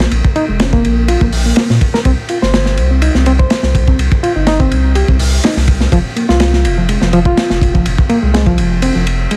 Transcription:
0.00 A#3, snare, ride
0.11 A#1, ride
0.25 kick
0.36 D#4, ride
0.48 F1 G#3
0.60 C#4, snare, ride
0.73 A#3, kick
0.84 A#1, ride
1.08 F4, ride
1.21 A#1 A#3, kick
1.32 open hi-hat
1.46 A#3
1.56 A#3, snare, ride
1.70 A#2, snare
1.81 kick, ride
1.94 A#4, snare
2.05 C2 C4, kick, ride
2.29 F4, ride
2.42 G1 C5, snare
2.54 snare, ride
2.66 snare
2.77 C2, ride
2.91 C4
3.02 D#4, ride
3.15 C2 C4, snare
3.26 C4, ride
3.39 C5, kick
3.50 snare, ride
3.63 C2, snare
3.75 kick, ride
3.87 C4, kick
3.98 C2, ride
4.12 kick
4.23 F4, ride
4.35 G1 D#4
4.47 D#4, snare, ride
4.60 C4, kick
4.71 C2, ride
4.95 G4, ride
5.08 C2 C4, kick
5.19 open hi-hat
5.44 D#4, snare, ride
5.57 C2, snare
5.68 kick, ride
5.80 snare
5.92 F1 F3, kick, ride
6.16 A#3, ride
6.29 C2 F4, snare
6.40 snare, ride
6.53 snare
6.65 F1, ride
6.78 F3
6.89 G#3, ride
7.02 F1 F3, snare
7.13 F3, ride
7.25 F4, kick
7.37 snare, ride
7.50 F1, snare
7.61 kick, ride
7.74 F3, kick
7.86 F1, ride
7.98 kick
8.09 A#3, ride
8.22 C2 G#3
8.34 G#3, snare, ride
8.46 F3, kick
8.58 F1, ride
8.82 C4, ride
8.95 F1 F3
9.07 ride
9.31 G#3, ride

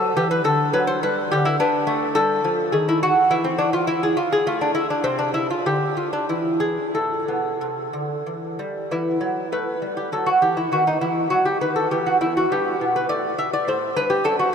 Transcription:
Already playing: F#3 A4
0.17 E3 G4
0.31 B4
0.44 D3 A4
0.73 F#3 B4
0.87 C5
1.03 G3 B4
1.31 D3 G4
1.45 E4
1.60 B3 D4
1.87 A3
2.15 G3 A4
2.44 F3
2.72 D#3 G#4
2.89 E4
3.03 F#4
3.30 E3 E4
3.44 C4
3.58 D4
3.73 F4
3.87 E4
4.03 G#4
4.17 F4
4.32 G#4
4.47 A3 F4
4.61 D4
4.75 E4
4.90 D4
5.04 C3 C4
5.19 D4
5.34 E4
5.50 F4
5.66 D3 G4
5.97 F4
6.13 D4
6.29 E3 E4
6.60 G#4
6.95 A2 A4
7.28 B2
7.61 C3
7.93 D3
8.26 E3
8.59 G3
8.91 E3 B3 E4
9.21 F#3
9.52 A3 B4
9.82 G3
9.97 G4
10.12 F#3 A4
10.26 F#4
10.42 E3 G4
10.57 E4
10.72 D#3 B3 F#4
10.87 D#4
11.01 E3 E4
11.30 F#3 F#4
11.45 G4
11.61 D#3 B4
11.76 A4
11.91 E3 B3 G4
12.06 F#4
12.21 E2 E4
12.37 F#4
12.52 G2 B3 G4
12.81 B2
12.96 B4
13.09 A2 D5
13.38 B2 E5
13.53 D5
13.68 A2 C5
13.96 G2 B4
14.10 G4
14.24 F#2 D4 A4
14.39 F#4

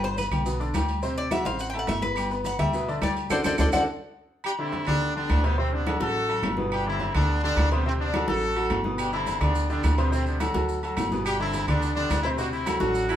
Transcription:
Already playing: G1
0.03 B3 B4 C5 B5, high conga, maracas
0.18 B4, high conga, low timbale, low agogo, maracas
0.31 B1 G3 G4 G5, high conga, low conga, low agogo, claves, maracas
0.45 B2 B3 B4, maracas
0.60 D3 D4 D5, high conga, maracas
0.74 D2 G3 G4 G5, high conga, low timbale, low agogo, claves, maracas
0.89 high conga, low agogo, maracas
1.03 C3 C4 C5, high conga, maracas
1.17 D5, high conga, maracas
1.31 F#3 F#4 E5 F#5, high conga, low timbale, low agogo, claves, maracas
1.45 A1 C4 C5 F5 C6, high conga, low agogo, maracas
1.59 F#5, maracas
1.70 G5, high conga, low agogo
1.74 A3 A4 A5, maracas
1.79 F#5
1.87 G1 E5, high conga, low timbale, low agogo, claves, maracas
2.02 B3 B4 B5, high conga, maracas
2.16 G3 G4 G5, low agogo, claves, maracas
2.30 B3 B4 B5, high conga, maracas
2.44 F#5, high conga, low timbale, low agogo, maracas
2.59 D2 G3 G4 E5 G5, high conga, low conga, low agogo, claves, maracas
2.73 B2 B3 B4, high conga, maracas
2.87 D3 D4 D5, high conga, maracas
3.01 D2 G3 G4 D5 G5, high conga, low timbale, low agogo, claves, maracas
3.16 high conga, low agogo, maracas
3.30 D2 D4 F#4 A4 C5 D5 F#5, high conga, high timbale, claves, maracas
3.44 D2 D4 F#4 A4 C5 D5 F#5, high conga, high timbale, claves, maracas
3.58 D2 D4 F#4 A4 C5 D5 F#5, high conga, high timbale, claves, maracas
3.72 D2 D4 F#4 A4 C5 D5 F#5, high conga, high timbale, claves, maracas
4.44 D4 G4, high conga, low agogo, claves
4.59 D3 C4 D4 E4 G4, high conga
4.72 high conga, low timbale, low agogo
4.87 D2 D3 B3 D4 G4, high conga, low conga, low agogo, claves
5.02 high conga
5.16 D3 B3 D4 G4, high conga
5.29 D2, high conga, low timbale, low agogo, claves
5.43 C3 G3 B3 C4 C5, high conga, low agogo
5.58 C3 A3 C4 C5, high conga
5.72 B3 D4, high conga
5.86 F#3 F#4 A4, high conga, low timbale, low agogo, claves
6.00 A1 F#3 F#4 A4, high conga, low agogo
6.15 high conga
6.29 F#3 F#4 A4, high conga, low agogo
6.43 G1, high conga, low timbale, low agogo, claves
6.57 B2 B3 B4, high conga
6.71 D4 G4, high conga, low agogo, claves
6.85 D3 C4 D4 E4 G4, high conga
7.00 high conga, low timbale, low agogo
7.14 D2 D3 B3 D4 G4, high conga, low conga, low agogo, claves
7.29 high conga
7.43 D3 B3 D4 G4, high conga
7.57 D2, high conga, low timbale, low agogo, claves
7.71 C3 G3 B3 C4 C5, high conga, low agogo
7.86 C3 A3 C4 C5, high conga
8.00 B3 D4, high conga
8.14 F#3 F#4 A4, high conga, low timbale, low agogo, claves
8.28 A1 F#3 F#4 A4, high conga, low agogo
8.42 high conga
8.56 F#3 F#4 A4, high conga, low agogo
8.70 G1, high conga, low timbale, low agogo, claves
8.84 B2 B3 B4, high conga
8.98 D4 G4, high conga, low agogo, claves, maracas
9.13 D3 C4 D4 E4 G4, high conga, maracas
9.27 high conga, low timbale, low agogo, maracas
9.40 D2 D3 B3 D4 G4, high conga, low conga, low agogo, claves, maracas
9.55 high conga, maracas
9.69 D3 B3 D4 G4, high conga, maracas
9.83 D2, high conga, low timbale, low agogo, claves, maracas
9.98 C3 G3 B3 C4 C5, high conga, low agogo, maracas
10.12 C3 A3 C4 C5, high conga, maracas
10.26 B3 D4, high conga, maracas
10.40 F#3 F#4 A4, high conga, low timbale, low agogo, claves, maracas
10.54 D2 F#3 F#4 A4, high conga, low agogo, maracas
10.69 high conga, maracas
10.83 F#3 F#4 A4, high conga, low agogo, maracas
10.97 G1, high conga, low timbale, low agogo, claves, maracas
11.12 B2 B3 B4, high conga, maracas
11.26 D4 G4, high conga, low agogo, claves, maracas
11.40 D3 C4 D4 E4 G4, high conga, maracas
11.53 high conga, low timbale, low agogo, maracas
11.67 D2 D3 B3 D4 G4, high conga, low conga, low agogo, claves, maracas
11.82 high conga, maracas
11.95 D3 B3 D4 G4, high conga, maracas
12.10 D2, high conga, low timbale, low agogo, claves, maracas
12.23 C3 C4 E4 C5, high conga, low agogo, maracas
12.37 C3 C4 D4 F#4 C5, high conga, maracas
12.52 C4 E4, high conga, maracas
12.66 F#3 F#4 A4, high conga, low timbale, low agogo, claves, maracas
12.80 A1 F#3 D4 F#4 A4, high conga, low agogo, maracas
12.95 high conga, maracas
13.09 F#3 E4 F#4 A4, high conga, low agogo, maracas

